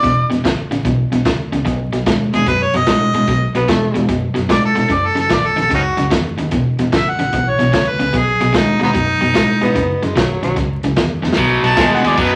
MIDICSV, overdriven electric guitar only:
0, 0, Header, 1, 2, 480
1, 0, Start_track
1, 0, Tempo, 404585
1, 49, Time_signature, 4, 2, 24, 8
1, 14659, End_track
2, 0, Start_track
2, 0, Title_t, "Overdriven electric guitar"
2, 0, Program_c, 0, 29
2, 36, Note_on_c, 0, 40, 73
2, 45, Note_on_c, 0, 47, 84
2, 328, Note_off_c, 0, 40, 0
2, 333, Note_off_c, 0, 47, 0
2, 352, Note_on_c, 0, 40, 57
2, 361, Note_on_c, 0, 47, 82
2, 505, Note_off_c, 0, 40, 0
2, 509, Note_off_c, 0, 47, 0
2, 521, Note_on_c, 0, 40, 81
2, 528, Note_on_c, 0, 49, 96
2, 810, Note_off_c, 0, 40, 0
2, 814, Note_off_c, 0, 49, 0
2, 842, Note_on_c, 0, 40, 62
2, 845, Note_on_c, 0, 49, 71
2, 990, Note_off_c, 0, 40, 0
2, 991, Note_off_c, 0, 49, 0
2, 1005, Note_on_c, 0, 40, 69
2, 1011, Note_on_c, 0, 47, 88
2, 1292, Note_off_c, 0, 40, 0
2, 1295, Note_off_c, 0, 47, 0
2, 1329, Note_on_c, 0, 40, 68
2, 1338, Note_on_c, 0, 47, 80
2, 1473, Note_off_c, 0, 40, 0
2, 1478, Note_off_c, 0, 47, 0
2, 1489, Note_on_c, 0, 40, 77
2, 1498, Note_on_c, 0, 49, 90
2, 1774, Note_off_c, 0, 40, 0
2, 1779, Note_off_c, 0, 49, 0
2, 1808, Note_on_c, 0, 40, 69
2, 1812, Note_on_c, 0, 49, 73
2, 1953, Note_off_c, 0, 40, 0
2, 1954, Note_off_c, 0, 49, 0
2, 1958, Note_on_c, 0, 47, 76
2, 1960, Note_on_c, 0, 54, 79
2, 2249, Note_off_c, 0, 47, 0
2, 2250, Note_off_c, 0, 54, 0
2, 2284, Note_on_c, 0, 47, 64
2, 2286, Note_on_c, 0, 54, 67
2, 2431, Note_off_c, 0, 47, 0
2, 2432, Note_off_c, 0, 54, 0
2, 2450, Note_on_c, 0, 47, 71
2, 2457, Note_on_c, 0, 56, 77
2, 2735, Note_off_c, 0, 47, 0
2, 2738, Note_off_c, 0, 56, 0
2, 2772, Note_on_c, 0, 47, 74
2, 2775, Note_on_c, 0, 56, 79
2, 2915, Note_off_c, 0, 47, 0
2, 2916, Note_off_c, 0, 56, 0
2, 2933, Note_on_c, 0, 47, 68
2, 2933, Note_on_c, 0, 54, 86
2, 3216, Note_off_c, 0, 47, 0
2, 3216, Note_off_c, 0, 54, 0
2, 3255, Note_on_c, 0, 47, 71
2, 3263, Note_on_c, 0, 54, 82
2, 3396, Note_off_c, 0, 47, 0
2, 3400, Note_off_c, 0, 54, 0
2, 3418, Note_on_c, 0, 47, 86
2, 3423, Note_on_c, 0, 56, 98
2, 3699, Note_off_c, 0, 47, 0
2, 3701, Note_off_c, 0, 56, 0
2, 3728, Note_on_c, 0, 47, 70
2, 3734, Note_on_c, 0, 56, 78
2, 3873, Note_off_c, 0, 47, 0
2, 3876, Note_off_c, 0, 56, 0
2, 3891, Note_on_c, 0, 47, 83
2, 3901, Note_on_c, 0, 54, 84
2, 4176, Note_off_c, 0, 47, 0
2, 4181, Note_off_c, 0, 54, 0
2, 4211, Note_on_c, 0, 47, 68
2, 4220, Note_on_c, 0, 54, 74
2, 4355, Note_off_c, 0, 47, 0
2, 4359, Note_off_c, 0, 54, 0
2, 4368, Note_on_c, 0, 47, 80
2, 4376, Note_on_c, 0, 56, 95
2, 4655, Note_off_c, 0, 47, 0
2, 4659, Note_off_c, 0, 56, 0
2, 4678, Note_on_c, 0, 47, 65
2, 4687, Note_on_c, 0, 56, 71
2, 4828, Note_off_c, 0, 47, 0
2, 4833, Note_off_c, 0, 56, 0
2, 4847, Note_on_c, 0, 47, 66
2, 4849, Note_on_c, 0, 54, 77
2, 5134, Note_off_c, 0, 47, 0
2, 5135, Note_off_c, 0, 54, 0
2, 5150, Note_on_c, 0, 47, 63
2, 5159, Note_on_c, 0, 54, 80
2, 5305, Note_off_c, 0, 47, 0
2, 5309, Note_off_c, 0, 54, 0
2, 5328, Note_on_c, 0, 47, 79
2, 5336, Note_on_c, 0, 56, 99
2, 5615, Note_off_c, 0, 47, 0
2, 5619, Note_off_c, 0, 56, 0
2, 5639, Note_on_c, 0, 47, 71
2, 5645, Note_on_c, 0, 56, 74
2, 5790, Note_off_c, 0, 47, 0
2, 5793, Note_off_c, 0, 56, 0
2, 5797, Note_on_c, 0, 42, 76
2, 5805, Note_on_c, 0, 49, 74
2, 6090, Note_off_c, 0, 42, 0
2, 6094, Note_off_c, 0, 49, 0
2, 6111, Note_on_c, 0, 42, 70
2, 6112, Note_on_c, 0, 49, 72
2, 6266, Note_off_c, 0, 42, 0
2, 6267, Note_off_c, 0, 49, 0
2, 6281, Note_on_c, 0, 42, 79
2, 6285, Note_on_c, 0, 51, 86
2, 6573, Note_off_c, 0, 42, 0
2, 6574, Note_off_c, 0, 51, 0
2, 6597, Note_on_c, 0, 42, 66
2, 6605, Note_on_c, 0, 51, 84
2, 6746, Note_off_c, 0, 42, 0
2, 6753, Note_off_c, 0, 51, 0
2, 6760, Note_on_c, 0, 42, 74
2, 6770, Note_on_c, 0, 49, 78
2, 7053, Note_off_c, 0, 42, 0
2, 7057, Note_off_c, 0, 49, 0
2, 7085, Note_on_c, 0, 42, 76
2, 7096, Note_on_c, 0, 49, 76
2, 7227, Note_off_c, 0, 42, 0
2, 7239, Note_off_c, 0, 49, 0
2, 7241, Note_on_c, 0, 42, 91
2, 7251, Note_on_c, 0, 51, 94
2, 7533, Note_off_c, 0, 42, 0
2, 7538, Note_off_c, 0, 51, 0
2, 7565, Note_on_c, 0, 42, 67
2, 7576, Note_on_c, 0, 51, 75
2, 7714, Note_off_c, 0, 42, 0
2, 7720, Note_off_c, 0, 51, 0
2, 7732, Note_on_c, 0, 40, 75
2, 7733, Note_on_c, 0, 47, 77
2, 8019, Note_off_c, 0, 40, 0
2, 8020, Note_off_c, 0, 47, 0
2, 8057, Note_on_c, 0, 40, 65
2, 8060, Note_on_c, 0, 47, 77
2, 8201, Note_off_c, 0, 40, 0
2, 8202, Note_off_c, 0, 47, 0
2, 8214, Note_on_c, 0, 40, 77
2, 8219, Note_on_c, 0, 49, 82
2, 8500, Note_off_c, 0, 40, 0
2, 8503, Note_off_c, 0, 49, 0
2, 8528, Note_on_c, 0, 40, 76
2, 8537, Note_on_c, 0, 49, 65
2, 8677, Note_off_c, 0, 40, 0
2, 8681, Note_off_c, 0, 49, 0
2, 8694, Note_on_c, 0, 40, 83
2, 8706, Note_on_c, 0, 47, 87
2, 8981, Note_off_c, 0, 40, 0
2, 8987, Note_off_c, 0, 47, 0
2, 9002, Note_on_c, 0, 40, 71
2, 9007, Note_on_c, 0, 47, 75
2, 9146, Note_off_c, 0, 40, 0
2, 9156, Note_off_c, 0, 47, 0
2, 9160, Note_on_c, 0, 40, 88
2, 9170, Note_on_c, 0, 49, 87
2, 9454, Note_off_c, 0, 40, 0
2, 9459, Note_off_c, 0, 49, 0
2, 9483, Note_on_c, 0, 40, 68
2, 9485, Note_on_c, 0, 49, 89
2, 9634, Note_off_c, 0, 40, 0
2, 9635, Note_off_c, 0, 49, 0
2, 9644, Note_on_c, 0, 47, 78
2, 9656, Note_on_c, 0, 54, 79
2, 9936, Note_off_c, 0, 47, 0
2, 9942, Note_off_c, 0, 54, 0
2, 9976, Note_on_c, 0, 47, 68
2, 9981, Note_on_c, 0, 54, 77
2, 10104, Note_off_c, 0, 47, 0
2, 10118, Note_on_c, 0, 47, 68
2, 10124, Note_off_c, 0, 54, 0
2, 10131, Note_on_c, 0, 56, 86
2, 10413, Note_off_c, 0, 47, 0
2, 10419, Note_off_c, 0, 56, 0
2, 10436, Note_on_c, 0, 47, 70
2, 10441, Note_on_c, 0, 56, 66
2, 10589, Note_off_c, 0, 47, 0
2, 10594, Note_off_c, 0, 56, 0
2, 10603, Note_on_c, 0, 47, 70
2, 10611, Note_on_c, 0, 54, 90
2, 10895, Note_off_c, 0, 47, 0
2, 10900, Note_off_c, 0, 54, 0
2, 10924, Note_on_c, 0, 47, 76
2, 10933, Note_on_c, 0, 54, 79
2, 11069, Note_off_c, 0, 47, 0
2, 11079, Note_off_c, 0, 54, 0
2, 11083, Note_on_c, 0, 47, 79
2, 11087, Note_on_c, 0, 56, 93
2, 11375, Note_off_c, 0, 47, 0
2, 11378, Note_off_c, 0, 56, 0
2, 11406, Note_on_c, 0, 47, 75
2, 11407, Note_on_c, 0, 56, 76
2, 11556, Note_off_c, 0, 47, 0
2, 11556, Note_off_c, 0, 56, 0
2, 11567, Note_on_c, 0, 42, 80
2, 11575, Note_on_c, 0, 49, 80
2, 11857, Note_off_c, 0, 42, 0
2, 11861, Note_off_c, 0, 49, 0
2, 11894, Note_on_c, 0, 42, 71
2, 11897, Note_on_c, 0, 49, 73
2, 12032, Note_off_c, 0, 42, 0
2, 12041, Note_off_c, 0, 49, 0
2, 12047, Note_on_c, 0, 42, 78
2, 12051, Note_on_c, 0, 51, 93
2, 12336, Note_off_c, 0, 42, 0
2, 12338, Note_off_c, 0, 51, 0
2, 12371, Note_on_c, 0, 42, 60
2, 12375, Note_on_c, 0, 51, 68
2, 12518, Note_off_c, 0, 42, 0
2, 12520, Note_off_c, 0, 51, 0
2, 12530, Note_on_c, 0, 42, 69
2, 12536, Note_on_c, 0, 49, 83
2, 12817, Note_off_c, 0, 42, 0
2, 12820, Note_off_c, 0, 49, 0
2, 12860, Note_on_c, 0, 42, 62
2, 12863, Note_on_c, 0, 49, 77
2, 12994, Note_off_c, 0, 42, 0
2, 13003, Note_off_c, 0, 49, 0
2, 13008, Note_on_c, 0, 42, 80
2, 13016, Note_on_c, 0, 51, 90
2, 13296, Note_off_c, 0, 42, 0
2, 13300, Note_off_c, 0, 51, 0
2, 13315, Note_on_c, 0, 42, 75
2, 13327, Note_on_c, 0, 51, 85
2, 13468, Note_off_c, 0, 42, 0
2, 13474, Note_off_c, 0, 51, 0
2, 13496, Note_on_c, 0, 47, 79
2, 13498, Note_on_c, 0, 54, 92
2, 13779, Note_off_c, 0, 47, 0
2, 13780, Note_off_c, 0, 54, 0
2, 13802, Note_on_c, 0, 47, 61
2, 13811, Note_on_c, 0, 54, 74
2, 13951, Note_off_c, 0, 47, 0
2, 13955, Note_off_c, 0, 54, 0
2, 13977, Note_on_c, 0, 47, 79
2, 13980, Note_on_c, 0, 56, 80
2, 14258, Note_off_c, 0, 47, 0
2, 14260, Note_off_c, 0, 56, 0
2, 14287, Note_on_c, 0, 47, 67
2, 14291, Note_on_c, 0, 56, 84
2, 14432, Note_off_c, 0, 47, 0
2, 14434, Note_off_c, 0, 56, 0
2, 14450, Note_on_c, 0, 54, 88
2, 14451, Note_on_c, 0, 47, 82
2, 14659, Note_off_c, 0, 47, 0
2, 14659, Note_off_c, 0, 54, 0
2, 14659, End_track
0, 0, End_of_file